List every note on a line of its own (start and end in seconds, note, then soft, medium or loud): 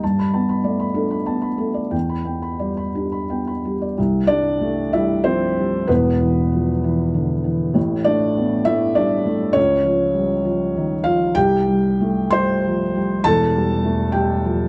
0.03 1.90 G2 medium
0.03 0.27 A5 soft
0.19 0.43 B5 soft
0.34 0.83 B3 soft
0.34 0.58 A5 soft
0.49 0.74 B5 soft
0.64 1.14 A3 soft
0.64 0.89 D5 soft
0.80 1.05 B5 soft
0.94 1.46 D4 soft
0.94 1.20 A4 soft
1.11 1.36 B5 soft
1.26 1.80 B3 soft
1.26 1.53 A5 soft
1.42 1.69 B5 soft
1.58 1.92 A3 soft
1.58 1.85 A4 soft
1.74 1.92 D5 soft
1.91 3.92 E2 soft
1.91 2.19 G5 soft
2.09 2.37 B5 soft
2.25 2.81 B3 soft
2.25 2.53 G5 soft
2.42 2.71 B5 soft
2.59 3.15 G3 soft
2.59 2.88 D5 soft
2.77 3.05 B5 soft
2.95 3.50 D4 soft
2.95 3.23 G4 soft
3.12 3.40 B5 soft
3.29 3.84 B3 soft
3.29 3.57 G5 soft
3.47 3.75 B5 soft
3.65 3.98 G3 soft
3.65 3.91 G4 soft
3.82 3.98 D5 soft
3.98 5.85 C2 medium
4.27 4.81 G3 medium
4.27 4.90 D4 medium
4.27 4.93 D5 loud
4.61 4.94 A3 soft
4.93 5.45 G3 medium
4.93 5.24 E4 medium
4.93 5.26 E5 medium
5.24 5.58 F3 soft
5.24 5.84 C4 medium
5.24 5.88 C5 loud
5.57 5.89 G3 soft
5.87 7.71 E1 medium
5.87 7.71 E2 medium
5.87 7.71 B3 medium
5.87 7.75 B4 medium
6.20 6.70 E3 soft
6.52 6.83 F3 soft
6.84 7.33 E3 medium
7.14 7.45 D3 soft
7.44 7.75 E3 soft
7.74 9.51 A1 medium
7.74 9.51 A2 medium
8.04 8.55 A3 medium
8.04 8.63 D4 medium
8.04 8.66 D5 loud
8.37 8.67 B3 soft
8.65 9.14 A3 medium
8.65 8.94 E4 medium
8.65 8.96 E5 loud
8.95 9.26 G3 soft
8.95 9.52 D4 medium
8.95 9.55 D5 loud
9.26 9.56 A3 medium
9.53 11.31 C#2 medium
9.53 11.00 C#4 medium
9.53 11.04 C#5 loud
9.84 10.33 F3 medium
10.14 10.45 G3 soft
10.45 10.93 F3 medium
10.76 11.06 D#3 soft
11.04 11.36 F3 medium
11.04 11.33 F4 medium
11.04 11.35 F5 loud
11.35 13.21 C2 medium
11.35 12.28 G4 medium
11.35 12.32 G5 loud
11.68 12.20 G3 medium
12.01 12.33 A3 soft
12.30 12.82 G3 medium
12.30 13.21 C5 medium
12.30 13.24 C6 loud
12.66 12.96 F3 soft
12.95 13.25 G3 medium
13.24 14.68 E1 medium
13.24 14.68 E2 medium
13.24 14.10 A4 loud
13.24 14.13 A5 loud
13.55 14.02 G3 medium
13.84 14.14 A3 soft
14.12 14.62 G3 medium
14.12 14.68 G4 medium
14.12 14.68 G5 medium
14.45 14.68 F3 soft